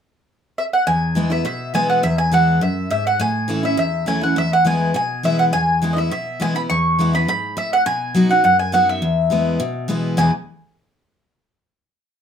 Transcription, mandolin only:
0, 0, Header, 1, 2, 480
1, 0, Start_track
1, 0, Key_signature, 4, "major"
1, 0, Tempo, 290557
1, 1442, Time_signature, 4, 2, 24, 8
1, 20176, End_track
2, 0, Start_track
2, 0, Title_t, "Mandolin"
2, 0, Program_c, 0, 25
2, 963, Note_on_c, 0, 76, 82
2, 1045, Note_off_c, 0, 76, 0
2, 1212, Note_on_c, 0, 78, 84
2, 1427, Note_off_c, 0, 78, 0
2, 1435, Note_on_c, 0, 80, 88
2, 2166, Note_off_c, 0, 80, 0
2, 2172, Note_on_c, 0, 76, 85
2, 2383, Note_off_c, 0, 76, 0
2, 2403, Note_on_c, 0, 76, 86
2, 2848, Note_off_c, 0, 76, 0
2, 2887, Note_on_c, 0, 80, 95
2, 3113, Note_off_c, 0, 80, 0
2, 3132, Note_on_c, 0, 78, 84
2, 3355, Note_off_c, 0, 78, 0
2, 3362, Note_on_c, 0, 76, 100
2, 3600, Note_off_c, 0, 76, 0
2, 3606, Note_on_c, 0, 80, 92
2, 3824, Note_off_c, 0, 80, 0
2, 3860, Note_on_c, 0, 78, 89
2, 4297, Note_off_c, 0, 78, 0
2, 4335, Note_on_c, 0, 76, 77
2, 4792, Note_off_c, 0, 76, 0
2, 4812, Note_on_c, 0, 76, 80
2, 5036, Note_off_c, 0, 76, 0
2, 5068, Note_on_c, 0, 78, 94
2, 5294, Note_off_c, 0, 78, 0
2, 5301, Note_on_c, 0, 80, 98
2, 5969, Note_off_c, 0, 80, 0
2, 6029, Note_on_c, 0, 76, 82
2, 6238, Note_off_c, 0, 76, 0
2, 6261, Note_on_c, 0, 76, 82
2, 6701, Note_off_c, 0, 76, 0
2, 6737, Note_on_c, 0, 80, 96
2, 6961, Note_off_c, 0, 80, 0
2, 6996, Note_on_c, 0, 78, 86
2, 7203, Note_off_c, 0, 78, 0
2, 7238, Note_on_c, 0, 76, 105
2, 7453, Note_off_c, 0, 76, 0
2, 7488, Note_on_c, 0, 78, 98
2, 7691, Note_off_c, 0, 78, 0
2, 7710, Note_on_c, 0, 80, 95
2, 8174, Note_off_c, 0, 80, 0
2, 8194, Note_on_c, 0, 80, 92
2, 8631, Note_off_c, 0, 80, 0
2, 8675, Note_on_c, 0, 76, 90
2, 8894, Note_off_c, 0, 76, 0
2, 8906, Note_on_c, 0, 78, 91
2, 8989, Note_off_c, 0, 78, 0
2, 9134, Note_on_c, 0, 80, 99
2, 9754, Note_off_c, 0, 80, 0
2, 9798, Note_on_c, 0, 75, 65
2, 9861, Note_off_c, 0, 75, 0
2, 9882, Note_on_c, 0, 76, 86
2, 10091, Note_off_c, 0, 76, 0
2, 10113, Note_on_c, 0, 76, 89
2, 10554, Note_off_c, 0, 76, 0
2, 10605, Note_on_c, 0, 80, 102
2, 10826, Note_off_c, 0, 80, 0
2, 10833, Note_on_c, 0, 83, 102
2, 10915, Note_off_c, 0, 83, 0
2, 11062, Note_on_c, 0, 85, 102
2, 11738, Note_off_c, 0, 85, 0
2, 11806, Note_on_c, 0, 83, 100
2, 12023, Note_off_c, 0, 83, 0
2, 12043, Note_on_c, 0, 83, 105
2, 12480, Note_off_c, 0, 83, 0
2, 12519, Note_on_c, 0, 76, 91
2, 12765, Note_off_c, 0, 76, 0
2, 12772, Note_on_c, 0, 78, 97
2, 12978, Note_off_c, 0, 78, 0
2, 12985, Note_on_c, 0, 80, 115
2, 13659, Note_off_c, 0, 80, 0
2, 13721, Note_on_c, 0, 78, 90
2, 13934, Note_off_c, 0, 78, 0
2, 13954, Note_on_c, 0, 78, 87
2, 14190, Note_off_c, 0, 78, 0
2, 14196, Note_on_c, 0, 80, 89
2, 14410, Note_off_c, 0, 80, 0
2, 14433, Note_on_c, 0, 78, 96
2, 14657, Note_off_c, 0, 78, 0
2, 14692, Note_on_c, 0, 76, 87
2, 16284, Note_off_c, 0, 76, 0
2, 16817, Note_on_c, 0, 80, 91
2, 17046, Note_off_c, 0, 80, 0
2, 20176, End_track
0, 0, End_of_file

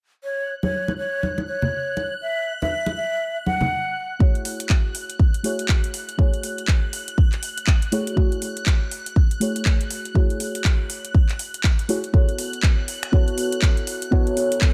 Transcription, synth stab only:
0, 0, Header, 1, 2, 480
1, 0, Start_track
1, 0, Key_signature, 3, "minor"
1, 0, Tempo, 495868
1, 230, Time_signature, 4, 2, 24, 8
1, 14263, End_track
2, 0, Start_track
2, 0, Title_t, "Synth stab"
2, 0, Program_c, 0, 62
2, 4058, Note_on_c, 0, 57, 84
2, 4064, Note_on_c, 0, 64, 76
2, 4069, Note_on_c, 0, 66, 76
2, 4074, Note_on_c, 0, 68, 74
2, 4080, Note_on_c, 0, 73, 89
2, 5241, Note_off_c, 0, 57, 0
2, 5244, Note_off_c, 0, 64, 0
2, 5246, Note_off_c, 0, 66, 0
2, 5249, Note_off_c, 0, 68, 0
2, 5252, Note_off_c, 0, 73, 0
2, 5259, Note_on_c, 0, 57, 71
2, 5263, Note_on_c, 0, 64, 65
2, 5269, Note_on_c, 0, 66, 68
2, 5274, Note_on_c, 0, 68, 65
2, 5280, Note_on_c, 0, 73, 80
2, 5961, Note_off_c, 0, 57, 0
2, 5964, Note_off_c, 0, 64, 0
2, 5966, Note_off_c, 0, 66, 0
2, 5969, Note_off_c, 0, 68, 0
2, 5972, Note_off_c, 0, 73, 0
2, 5978, Note_on_c, 0, 57, 91
2, 5983, Note_on_c, 0, 64, 78
2, 5989, Note_on_c, 0, 66, 80
2, 5994, Note_on_c, 0, 68, 81
2, 5999, Note_on_c, 0, 73, 98
2, 7641, Note_off_c, 0, 57, 0
2, 7644, Note_off_c, 0, 64, 0
2, 7646, Note_off_c, 0, 66, 0
2, 7649, Note_off_c, 0, 68, 0
2, 7652, Note_off_c, 0, 73, 0
2, 7663, Note_on_c, 0, 57, 75
2, 7666, Note_on_c, 0, 64, 71
2, 7669, Note_on_c, 0, 66, 71
2, 7671, Note_on_c, 0, 68, 69
2, 7674, Note_on_c, 0, 73, 86
2, 7883, Note_off_c, 0, 57, 0
2, 7885, Note_off_c, 0, 64, 0
2, 7886, Note_off_c, 0, 66, 0
2, 7888, Note_off_c, 0, 68, 0
2, 7889, Note_off_c, 0, 73, 0
2, 7899, Note_on_c, 0, 57, 85
2, 7905, Note_on_c, 0, 64, 81
2, 7910, Note_on_c, 0, 66, 77
2, 7915, Note_on_c, 0, 68, 77
2, 7921, Note_on_c, 0, 73, 94
2, 9081, Note_off_c, 0, 57, 0
2, 9084, Note_off_c, 0, 64, 0
2, 9087, Note_off_c, 0, 66, 0
2, 9090, Note_off_c, 0, 68, 0
2, 9092, Note_off_c, 0, 73, 0
2, 9099, Note_on_c, 0, 57, 73
2, 9104, Note_on_c, 0, 64, 67
2, 9110, Note_on_c, 0, 66, 67
2, 9114, Note_on_c, 0, 68, 69
2, 9121, Note_on_c, 0, 73, 83
2, 9801, Note_off_c, 0, 57, 0
2, 9804, Note_off_c, 0, 64, 0
2, 9807, Note_off_c, 0, 66, 0
2, 9809, Note_off_c, 0, 68, 0
2, 9812, Note_off_c, 0, 73, 0
2, 9819, Note_on_c, 0, 57, 89
2, 9824, Note_on_c, 0, 64, 82
2, 9829, Note_on_c, 0, 66, 81
2, 9834, Note_on_c, 0, 68, 80
2, 9840, Note_on_c, 0, 73, 95
2, 11481, Note_off_c, 0, 57, 0
2, 11484, Note_off_c, 0, 64, 0
2, 11486, Note_off_c, 0, 66, 0
2, 11489, Note_off_c, 0, 68, 0
2, 11492, Note_off_c, 0, 73, 0
2, 11504, Note_on_c, 0, 57, 85
2, 11506, Note_on_c, 0, 64, 78
2, 11509, Note_on_c, 0, 66, 78
2, 11512, Note_on_c, 0, 68, 79
2, 11514, Note_on_c, 0, 73, 92
2, 11620, Note_off_c, 0, 57, 0
2, 11622, Note_off_c, 0, 64, 0
2, 11623, Note_off_c, 0, 66, 0
2, 11624, Note_off_c, 0, 68, 0
2, 11626, Note_off_c, 0, 73, 0
2, 11739, Note_on_c, 0, 59, 80
2, 11744, Note_on_c, 0, 64, 71
2, 11750, Note_on_c, 0, 66, 71
2, 11755, Note_on_c, 0, 69, 73
2, 11760, Note_on_c, 0, 73, 86
2, 12689, Note_off_c, 0, 59, 0
2, 12692, Note_off_c, 0, 64, 0
2, 12694, Note_off_c, 0, 66, 0
2, 12697, Note_off_c, 0, 69, 0
2, 12699, Note_on_c, 0, 59, 77
2, 12700, Note_off_c, 0, 73, 0
2, 12704, Note_on_c, 0, 64, 70
2, 12709, Note_on_c, 0, 66, 72
2, 12715, Note_on_c, 0, 69, 70
2, 12720, Note_on_c, 0, 73, 82
2, 13647, Note_off_c, 0, 59, 0
2, 13652, Note_off_c, 0, 64, 0
2, 13654, Note_off_c, 0, 66, 0
2, 13657, Note_off_c, 0, 69, 0
2, 13658, Note_on_c, 0, 59, 80
2, 13660, Note_off_c, 0, 73, 0
2, 13664, Note_on_c, 0, 64, 75
2, 13669, Note_on_c, 0, 66, 74
2, 13674, Note_on_c, 0, 69, 75
2, 13679, Note_on_c, 0, 73, 93
2, 14263, Note_off_c, 0, 59, 0
2, 14263, Note_off_c, 0, 64, 0
2, 14263, Note_off_c, 0, 66, 0
2, 14263, Note_off_c, 0, 69, 0
2, 14263, Note_off_c, 0, 73, 0
2, 14263, End_track
0, 0, End_of_file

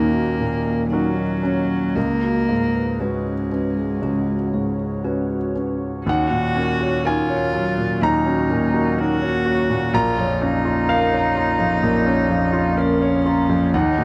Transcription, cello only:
0, 0, Header, 1, 2, 480
1, 0, Start_track
1, 0, Key_signature, -6, "minor"
1, 0, Tempo, 1029160
1, 915, Time_signature, 4, 2, 24, 8
1, 2833, Tempo, 967742
1, 4753, Tempo, 949367
1, 6824, End_track
2, 0, Start_track
2, 0, Title_t, "Cello"
2, 0, Program_c, 0, 42
2, 0, Note_on_c, 0, 58, 82
2, 421, Note_off_c, 0, 58, 0
2, 423, Note_on_c, 0, 54, 80
2, 913, Note_on_c, 0, 58, 83
2, 920, Note_off_c, 0, 54, 0
2, 1398, Note_on_c, 0, 56, 61
2, 1405, Note_off_c, 0, 58, 0
2, 2353, Note_off_c, 0, 56, 0
2, 2831, Note_on_c, 0, 66, 82
2, 3321, Note_on_c, 0, 65, 84
2, 3329, Note_off_c, 0, 66, 0
2, 3801, Note_on_c, 0, 63, 69
2, 3808, Note_off_c, 0, 65, 0
2, 4277, Note_on_c, 0, 66, 83
2, 4285, Note_off_c, 0, 63, 0
2, 4748, Note_on_c, 0, 65, 79
2, 4755, Note_off_c, 0, 66, 0
2, 4989, Note_on_c, 0, 63, 86
2, 4996, Note_off_c, 0, 65, 0
2, 6187, Note_on_c, 0, 61, 82
2, 6194, Note_off_c, 0, 63, 0
2, 6669, Note_on_c, 0, 63, 83
2, 6677, Note_off_c, 0, 61, 0
2, 6824, Note_off_c, 0, 63, 0
2, 6824, End_track
0, 0, End_of_file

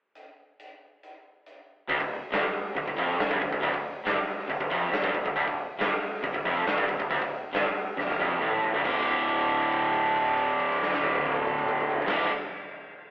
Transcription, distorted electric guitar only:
0, 0, Header, 1, 2, 480
1, 0, Start_track
1, 0, Tempo, 435414
1, 166, Time_signature, 4, 2, 24, 8
1, 14448, End_track
2, 0, Start_track
2, 0, Title_t, "Distorted electric guitar"
2, 0, Program_c, 0, 30
2, 2080, Note_on_c, 0, 38, 110
2, 2183, Note_off_c, 0, 38, 0
2, 2196, Note_on_c, 0, 38, 72
2, 2391, Note_off_c, 0, 38, 0
2, 2567, Note_on_c, 0, 43, 109
2, 2676, Note_off_c, 0, 43, 0
2, 3045, Note_on_c, 0, 38, 68
2, 3162, Note_off_c, 0, 38, 0
2, 3174, Note_on_c, 0, 38, 67
2, 3278, Note_off_c, 0, 38, 0
2, 3283, Note_on_c, 0, 41, 105
2, 3512, Note_off_c, 0, 41, 0
2, 3523, Note_on_c, 0, 38, 69
2, 3640, Note_off_c, 0, 38, 0
2, 3646, Note_on_c, 0, 43, 94
2, 3754, Note_off_c, 0, 43, 0
2, 3763, Note_on_c, 0, 38, 75
2, 3871, Note_off_c, 0, 38, 0
2, 3884, Note_on_c, 0, 38, 80
2, 3983, Note_off_c, 0, 38, 0
2, 3996, Note_on_c, 0, 38, 107
2, 4108, Note_off_c, 0, 38, 0
2, 4124, Note_on_c, 0, 38, 68
2, 4311, Note_off_c, 0, 38, 0
2, 4478, Note_on_c, 0, 43, 114
2, 4588, Note_off_c, 0, 43, 0
2, 4957, Note_on_c, 0, 38, 65
2, 5058, Note_off_c, 0, 38, 0
2, 5071, Note_on_c, 0, 38, 72
2, 5191, Note_off_c, 0, 38, 0
2, 5201, Note_on_c, 0, 41, 108
2, 5429, Note_off_c, 0, 41, 0
2, 5434, Note_on_c, 0, 38, 73
2, 5546, Note_off_c, 0, 38, 0
2, 5550, Note_on_c, 0, 43, 99
2, 5663, Note_off_c, 0, 43, 0
2, 5679, Note_on_c, 0, 38, 75
2, 5784, Note_off_c, 0, 38, 0
2, 5797, Note_on_c, 0, 38, 76
2, 5891, Note_off_c, 0, 38, 0
2, 5904, Note_on_c, 0, 38, 108
2, 6019, Note_off_c, 0, 38, 0
2, 6031, Note_on_c, 0, 38, 71
2, 6222, Note_off_c, 0, 38, 0
2, 6392, Note_on_c, 0, 43, 105
2, 6503, Note_off_c, 0, 43, 0
2, 6870, Note_on_c, 0, 38, 70
2, 6971, Note_off_c, 0, 38, 0
2, 6984, Note_on_c, 0, 38, 79
2, 7106, Note_off_c, 0, 38, 0
2, 7114, Note_on_c, 0, 41, 103
2, 7344, Note_off_c, 0, 41, 0
2, 7349, Note_on_c, 0, 38, 69
2, 7457, Note_off_c, 0, 38, 0
2, 7461, Note_on_c, 0, 43, 100
2, 7574, Note_off_c, 0, 43, 0
2, 7578, Note_on_c, 0, 38, 73
2, 7690, Note_off_c, 0, 38, 0
2, 7703, Note_on_c, 0, 38, 80
2, 7821, Note_off_c, 0, 38, 0
2, 7835, Note_on_c, 0, 38, 108
2, 7944, Note_off_c, 0, 38, 0
2, 7959, Note_on_c, 0, 38, 67
2, 8146, Note_off_c, 0, 38, 0
2, 8321, Note_on_c, 0, 43, 112
2, 8428, Note_off_c, 0, 43, 0
2, 8793, Note_on_c, 0, 38, 74
2, 8911, Note_off_c, 0, 38, 0
2, 8926, Note_on_c, 0, 38, 70
2, 9037, Note_off_c, 0, 38, 0
2, 9041, Note_on_c, 0, 41, 95
2, 9269, Note_off_c, 0, 41, 0
2, 9284, Note_on_c, 0, 45, 95
2, 9631, Note_off_c, 0, 45, 0
2, 9638, Note_on_c, 0, 38, 111
2, 9722, Note_off_c, 0, 38, 0
2, 9736, Note_on_c, 0, 38, 96
2, 9755, Note_on_c, 0, 45, 93
2, 9777, Note_on_c, 0, 50, 101
2, 13294, Note_off_c, 0, 38, 0
2, 13299, Note_on_c, 0, 38, 95
2, 13320, Note_off_c, 0, 45, 0
2, 13324, Note_on_c, 0, 45, 85
2, 13339, Note_off_c, 0, 50, 0
2, 13343, Note_on_c, 0, 50, 103
2, 13525, Note_off_c, 0, 38, 0
2, 13538, Note_off_c, 0, 45, 0
2, 13547, Note_off_c, 0, 50, 0
2, 14448, End_track
0, 0, End_of_file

